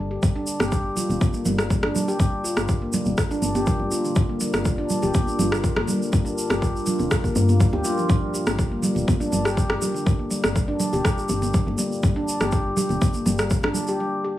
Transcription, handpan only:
0.11 0.22 G4 medium
0.22 0.30 G3 medium
0.36 0.46 D4 medium
0.60 0.71 G4 loud
0.72 0.79 G3 medium
0.96 1.08 F4 medium
1.09 1.21 D3 medium
1.34 1.45 A#3 medium
1.46 1.58 G3 medium
1.71 1.77 G3 medium
1.83 1.94 D4 medium
2.08 2.19 G4 loud
2.20 2.27 G3 medium
2.44 2.56 F4 medium
2.57 2.68 D3 medium
2.82 2.93 A#3 medium
2.94 3.05 G3 loud
3.31 3.41 D4 loud
3.55 3.66 G4 loud
3.67 3.74 G3 medium
3.92 4.03 F4 medium
4.04 4.16 D3 medium
4.29 4.40 A#3 medium
4.41 4.52 G3 loud
4.65 4.72 G3 medium
4.78 4.89 D4 loud
5.03 5.14 G4 loud
5.14 5.21 G3 medium
5.39 5.51 F4 medium
5.52 5.63 D3 medium
5.76 5.87 A#3 medium
5.88 6.00 G3 loud
6.12 6.20 G3 medium
6.25 6.36 D4 loud
6.50 6.61 G4 medium
6.61 6.69 G3 medium
6.86 6.98 F4 medium
6.99 7.10 D3 medium
7.24 7.34 A#3 medium
7.36 7.48 A#3 loud
7.60 7.72 G3 medium
7.73 7.84 G4 medium
7.85 7.97 F4 loud
7.98 8.08 F3 medium
8.09 8.16 G3 medium
8.34 8.41 G4 medium
8.47 8.58 D3 medium
8.72 8.83 A#3 medium
8.83 8.95 G3 loud
9.07 9.15 G3 medium
9.20 9.31 D4 loud
9.45 9.56 G4 loud
9.57 9.64 G3 medium
9.81 9.89 G4 medium
9.94 10.06 D3 medium
10.19 10.30 A#3 medium
10.31 10.42 G3 medium
10.55 10.63 G3 medium
10.68 10.79 D4 loud
10.93 11.04 G4 loud
11.04 11.12 G3 medium
11.29 11.36 G4 medium
11.42 11.53 D3 medium
11.67 11.78 A#3 medium
11.78 11.90 G3 loud
12.03 12.10 G3 medium
12.16 12.27 D4 loud
12.41 12.52 G4 loud
12.53 12.60 G3 medium
12.77 12.84 G4 medium
12.90 13.01 D3 medium
13.14 13.25 A#3 medium
13.26 13.38 G3 loud
13.51 13.58 G3 medium
13.64 13.74 D4 loud
13.88 13.99 G4 loud
14.00 14.07 G3 medium
14.24 14.31 G4 medium

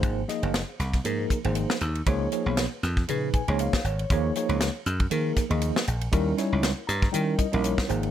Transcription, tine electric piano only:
0.00 0.20 F3 medium
0.00 0.21 A#3 medium
0.00 0.21 D#4 medium
0.00 0.21 G#4 medium
0.00 0.21 C5 medium
0.28 0.60 F3 medium
0.28 0.61 A#3 medium
0.28 0.61 D#4 medium
0.28 0.61 G#4 medium
0.28 0.61 D#5 medium
0.68 0.74 G#4 soft
0.68 0.74 C5 soft
0.80 0.87 G#4 soft
0.80 0.87 A#4 soft
1.04 1.37 F3 medium
1.04 1.37 A#3 medium
1.04 1.37 D#4 medium
1.04 1.37 G#4 medium
1.04 1.37 A#4 medium
1.44 1.75 F3 medium
1.44 1.75 A#3 medium
1.44 1.76 D#4 medium
1.44 1.76 G#4 medium
1.44 1.76 C5 medium
1.83 1.89 C5 soft
2.07 2.28 F3 medium
2.07 2.28 A#3 medium
2.07 2.28 D#4 medium
2.07 2.29 G#4 medium
2.07 2.29 C#5 loud
2.31 2.64 F3 medium
2.31 2.64 A#3 medium
2.31 2.64 D#4 medium
2.31 2.64 G#4 medium
2.31 2.64 C#5 medium
2.72 2.77 G#4 soft
2.72 2.78 B4 soft
2.83 2.90 G#4 soft
2.83 2.91 A#4 soft
3.08 3.40 A#2 medium
3.08 3.40 F3 medium
3.08 3.41 D#4 medium
3.08 3.41 G#4 medium
3.08 3.41 B4 medium
3.35 3.58 G#5 medium
3.48 3.79 F3 medium
3.48 3.79 A#3 medium
3.48 3.79 D#4 medium
3.48 3.79 G#4 medium
3.48 3.79 C#5 medium
3.60 3.83 F5 medium
3.86 3.92 G#4 soft
3.86 3.93 B4 soft
3.86 4.09 C#5 medium
4.11 4.32 F3 medium
4.11 4.32 A#3 medium
4.11 4.32 D#4 medium
4.11 4.33 G#4 medium
4.11 4.33 C#5 medium
4.35 4.67 F3 medium
4.35 4.68 A#3 medium
4.35 4.68 D#4 medium
4.35 4.68 G#4 medium
4.35 4.68 C#5 medium
4.76 4.81 C#5 soft
4.86 4.93 G#4 soft
4.86 4.93 D#5 soft
5.10 5.43 F3 medium
5.10 5.43 A#3 medium
5.10 5.43 D#4 medium
5.10 5.43 G#4 medium
5.10 5.44 A#4 medium
5.49 5.81 F3 medium
5.49 5.81 A#3 medium
5.49 5.81 D#4 medium
5.49 5.81 G#4 medium
5.49 5.81 D#5 medium
5.87 5.94 G#4 soft
5.87 5.94 D#5 soft
6.12 6.34 G3 medium
6.12 6.34 C#4 medium
6.12 6.34 D#4 medium
6.12 6.34 E4 medium
6.12 6.35 A#4 loud
6.37 6.69 G3 medium
6.37 6.70 C#4 medium
6.37 6.70 D#4 medium
6.37 6.70 E4 medium
6.37 6.70 C#5 medium
6.76 6.82 E4 soft
6.76 6.83 A#4 soft
6.87 6.95 E4 soft
6.87 6.96 C#5 soft
6.87 7.12 A#5 medium
7.12 7.45 G3 medium
7.12 7.45 C#4 medium
7.12 7.45 D#4 medium
7.12 7.46 E4 medium
7.12 7.46 A#4 medium
7.12 7.37 G5 medium
7.39 7.63 D#5 medium
7.52 7.83 G3 medium
7.52 7.83 C#4 medium
7.52 7.84 D#4 medium
7.52 7.84 E4 medium
7.52 7.84 A#4 medium
7.63 7.88 C#5 medium
7.88 8.11 F3 medium
7.88 8.11 A#3 medium
7.88 8.11 D#4 medium
7.88 8.11 G#4 medium
7.88 7.91 C5 medium

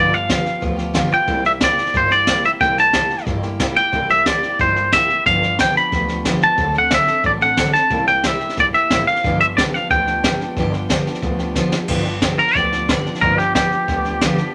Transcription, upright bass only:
0.00 0.31 G1 loud
0.46 muted upright bass stroke medium
0.62 0.97 D2 medium
1.12 muted upright bass stroke medium
1.28 1.63 C2 loud
1.78 muted upright bass stroke medium
1.94 2.29 G1 medium
2.44 muted upright bass stroke medium
2.61 2.95 C2 medium
3.10 muted upright bass stroke medium
3.27 3.61 G1 medium
3.93 4.28 C2 medium
4.43 muted upright bass stroke medium
4.59 4.94 G1 medium
5.09 muted upright bass stroke medium
5.26 5.61 G1 medium
5.76 muted upright bass stroke medium
5.93 6.27 D2 medium
6.41 muted upright bass stroke medium
6.58 6.93 D2 medium
7.08 muted upright bass stroke medium
7.24 7.59 A1 medium
7.90 8.25 C2 loud
8.40 muted upright bass stroke medium
8.57 8.71 A#1 medium
8.73 muted upright bass stroke medium
8.90 9.04 A1 loud
9.07 muted upright bass stroke medium
9.24 9.59 G1 loud
9.73 muted upright bass stroke medium
9.90 10.25 D2 medium
10.57 10.92 G1 medium
11.05 muted upright bass stroke medium
11.22 11.57 D2 medium
11.72 muted upright bass stroke medium
11.88 12.23 G1 medium
12.39 muted upright bass stroke medium
12.56 12.90 D2 medium
13.05 muted upright bass stroke medium
13.22 13.57 G1 loud
13.71 muted upright bass stroke medium
13.89 14.23 D2 medium
14.38 muted upright bass stroke medium

